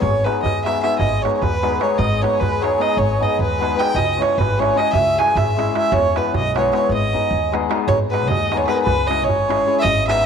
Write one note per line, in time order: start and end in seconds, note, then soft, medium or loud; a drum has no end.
0.00 0.27 G#1 medium
0.00 0.26 C#5 medium
0.00 0.24 C#5 medium
0.00 darbuka dum medium
0.25 0.63 G#3 medium
0.25 0.41 B3 medium
0.25 0.41 D#4 medium
0.25 0.41 G#4 medium
0.25 0.42 B4 medium
0.25 0.44 B4 medium
0.25 darbuka tek medium
0.42 0.77 D#2 medium
0.42 0.63 D#5 medium
0.42 darbuka dum medium
0.64 0.82 G#3 medium
0.64 0.80 B3 soft
0.64 0.80 D#4 medium
0.64 0.81 G#4 medium
0.64 0.80 E5 medium
0.64 0.81 E5 medium
0.64 darbuka tek medium
0.81 1.23 G#3 medium
0.81 0.97 B3 medium
0.81 0.98 D#4 medium
0.81 0.98 G#4 medium
0.81 0.98 E5 medium
0.81 darbuka tek medium
0.98 1.25 G#1 medium
0.98 1.21 D#5 medium
0.98 1.24 D#5 medium
0.98 darbuka dum medium
1.13 darbuka tek soft
1.22 1.62 G#3 medium
1.22 1.40 B3 soft
1.22 1.40 D#4 soft
1.22 1.40 G#4 medium
1.22 1.34 C#5 medium
1.22 1.35 C#5 medium
1.22 darbuka tek medium
1.35 1.43 C#5 medium
1.35 1.42 C#5 medium
1.41 1.76 D#2 medium
1.41 1.80 B4 medium
1.41 1.81 B4 loud
1.41 darbuka dum medium
1.62 1.80 G#3 medium
1.62 1.78 B3 medium
1.62 1.78 D#4 medium
1.62 1.78 G#4 medium
1.62 darbuka tek medium
1.80 2.21 G#3 medium
1.80 1.96 B3 medium
1.80 1.96 D#4 medium
1.80 1.96 G#4 medium
1.80 1.97 C#5 medium
1.80 1.99 C#5 medium
1.80 darbuka tek medium
1.98 2.24 G#1 loud
1.98 2.23 D#5 medium
1.98 2.22 D#5 medium
1.98 darbuka dum medium
2.12 darbuka tek soft
2.21 2.60 G#3 medium
2.21 2.38 B3 medium
2.21 2.38 D#4 soft
2.21 2.38 G#4 medium
2.21 2.40 C#5 medium
2.21 2.41 C#5 medium
2.21 darbuka tek medium
2.39 2.74 D#2 medium
2.39 2.61 B4 medium
2.39 2.64 B4 medium
2.39 darbuka dum medium
2.61 2.77 G#3 medium
2.61 2.76 B3 medium
2.61 2.77 D#4 medium
2.61 2.77 G#4 medium
2.61 2.79 C#5 medium
2.61 2.83 C#5 medium
2.61 darbuka tek medium
2.78 3.18 G#3 medium
2.78 2.94 B3 medium
2.78 2.94 D#4 medium
2.78 2.95 G#4 medium
2.78 2.97 D#5 medium
2.78 3.00 D#5 medium
2.78 darbuka tek medium
2.97 3.22 G#1 medium
2.97 3.21 C#5 medium
2.97 3.24 C#5 medium
2.97 darbuka dum medium
3.19 3.58 G#3 medium
3.19 3.36 B3 soft
3.19 3.36 D#4 medium
3.19 3.36 G#4 medium
3.19 3.39 D#5 medium
3.19 3.40 D#5 medium
3.19 darbuka dum medium
3.39 3.73 D#2 medium
3.39 3.75 B4 medium
3.39 3.81 B4 medium
3.39 darbuka dum medium
3.59 3.74 G#3 medium
3.59 3.74 B3 medium
3.59 3.75 D#4 medium
3.59 3.75 G#4 medium
3.59 darbuka tek medium
3.75 4.00 G#3 medium
3.75 3.91 B3 medium
3.75 3.92 D#4 medium
3.75 3.92 G#4 medium
3.75 3.95 G5 medium
3.79 3.98 G5 loud
3.79 darbuka tek medium
3.95 4.20 C#2 medium
3.95 4.19 D#5 medium
3.95 4.24 D#5 loud
3.95 darbuka dum medium
4.11 darbuka tek soft
4.17 4.56 G#3 medium
4.17 4.34 C#4 soft
4.17 4.34 E4 medium
4.17 4.35 G#4 medium
4.17 4.38 C#5 medium
4.22 4.40 C#5 medium
4.22 darbuka tek medium
4.38 4.71 G#1 medium
4.38 4.61 B4 medium
4.38 4.59 B4 medium
4.38 darbuka dum medium
4.57 4.73 G#3 medium
4.57 4.73 C#4 medium
4.57 4.73 E4 medium
4.57 4.74 G#4 medium
4.57 4.76 C#5 medium
4.57 4.79 C#5 medium
4.62 darbuka tek medium
4.74 5.17 G#3 medium
4.74 4.90 C#4 medium
4.74 4.91 E4 medium
4.74 4.91 G#4 medium
4.74 4.94 D#5 medium
4.74 4.92 D#5 loud
4.79 darbuka tek medium
4.93 5.19 C#2 medium
4.93 5.20 E5 loud
4.93 5.17 E5 medium
4.93 darbuka dum medium
5.08 darbuka tek soft
5.18 5.55 G#3 medium
5.18 5.33 C#4 soft
5.18 5.33 E4 soft
5.18 5.34 G#4 medium
5.18 5.38 G#5 medium
5.18 5.37 G#5 medium
5.18 darbuka tek medium
5.35 5.69 G#1 medium
5.35 5.75 E5 medium
5.35 darbuka dum medium
5.57 5.72 G#3 medium
5.57 5.72 C#4 medium
5.57 5.72 E4 medium
5.57 5.73 G#4 medium
5.57 darbuka tek medium
5.74 5.97 G#3 medium
5.74 5.89 C#4 medium
5.74 5.89 E4 soft
5.74 5.89 G#4 medium
5.74 5.94 E5 loud
5.74 darbuka tek medium
5.78 5.92 E5 medium
5.92 6.17 E2 loud
5.92 6.19 C#5 loud
5.92 6.17 C#5 loud
5.92 darbuka dum loud
6.06 darbuka tek soft
6.16 6.55 G#3 medium
6.16 6.31 B3 medium
6.16 6.31 E4 soft
6.16 6.32 G#4 medium
6.16 6.35 B4 medium
6.16 darbuka tek medium
6.20 6.36 B4 medium
6.34 6.68 B1 medium
6.34 6.55 D#5 medium
6.34 darbuka dum medium
6.56 6.72 G#3 medium
6.56 6.70 B3 medium
6.56 6.70 E4 medium
6.56 6.71 G#4 medium
6.56 6.72 C#5 medium
6.56 6.74 C#5 medium
6.56 darbuka tek medium
6.73 6.95 G#3 medium
6.73 6.87 B3 medium
6.73 6.88 E4 medium
6.73 6.88 G#4 medium
6.73 6.90 C#5 medium
6.73 6.91 C#5 medium
6.73 darbuka tek medium
6.89 7.15 G#1 medium
6.89 7.50 D#5 medium
6.89 darbuka dum medium
6.93 7.51 D#5 medium
7.13 7.51 G#3 medium
7.13 7.29 B3 soft
7.13 7.29 D#4 medium
7.13 7.30 G#4 medium
7.13 darbuka dum medium
7.31 7.65 D#2 medium
7.31 darbuka dum medium
7.52 7.68 G#3 medium
7.52 7.68 B3 medium
7.52 7.68 D#4 medium
7.52 7.69 G#4 medium
7.52 darbuka tek medium
7.69 7.93 G#3 medium
7.69 7.85 B3 medium
7.69 7.86 D#4 medium
7.69 7.86 G#4 medium
7.69 darbuka tek medium
7.87 8.30 G#1 medium
7.87 7.98 C#5 medium
7.87 7.99 C#5 loud
7.87 darbuka dum medium
8.01 darbuka tek soft
8.10 8.51 G#3 medium
8.10 8.27 B3 soft
8.10 8.28 D#4 soft
8.10 8.28 G#4 medium
8.10 8.29 B4 medium
8.10 8.28 B4 medium
8.10 darbuka tek medium
8.23 darbuka tek soft
8.28 8.64 D#2 medium
8.28 8.59 D#5 medium
8.28 8.60 D#5 medium
8.28 darbuka dum medium
8.43 darbuka tek soft
8.52 8.67 G#3 medium
8.52 8.66 B3 medium
8.52 8.67 D#4 medium
8.52 8.67 G#4 medium
8.52 darbuka tek medium
8.57 8.67 C#5 medium
8.57 8.68 C#5 medium
8.57 darbuka tek soft
8.67 8.91 G#3 medium
8.67 8.83 B3 medium
8.67 8.83 D#4 medium
8.67 8.84 G#4 medium
8.67 8.72 B4 medium
8.67 darbuka tek medium
8.72 8.74 A#4 medium
8.72 8.78 A#4 medium
8.72 8.81 B4 medium
8.72 8.83 B4 medium
8.82 9.09 B4 loud
8.82 9.08 B4 medium
8.86 9.28 C#2 medium
8.86 darbuka dum medium
8.99 darbuka tek soft
9.07 9.47 G#3 medium
9.07 9.25 C#4 medium
9.07 9.25 E4 soft
9.07 9.25 G#4 medium
9.07 9.26 D#5 loud
9.07 9.27 D#5 medium
9.07 darbuka tek medium
9.20 9.78 C#5 medium
9.20 darbuka tek soft
9.25 9.62 G#1 medium
9.25 9.78 C#5 medium
9.29 darbuka dum medium
9.40 darbuka tek soft
9.48 9.65 G#3 medium
9.48 9.64 C#4 medium
9.48 9.64 E4 medium
9.48 9.64 G#4 medium
9.48 darbuka tek medium
9.60 darbuka tek soft
9.66 9.89 G#3 medium
9.66 9.82 C#4 soft
9.66 9.82 E4 medium
9.66 9.82 G#4 medium
9.79 10.06 D#5 loud
9.79 9.83 E5 medium
9.79 9.84 E5 medium
9.84 10.26 G#1 medium
9.84 darbuka dum medium
9.98 darbuka tek soft
10.06 10.26 G#3 soft
10.06 10.23 B3 medium
10.06 10.24 D#4 soft
10.06 10.24 G#4 medium
10.06 10.24 E5 medium
10.06 10.26 E5 loud
10.06 darbuka tek medium
10.19 darbuka tek soft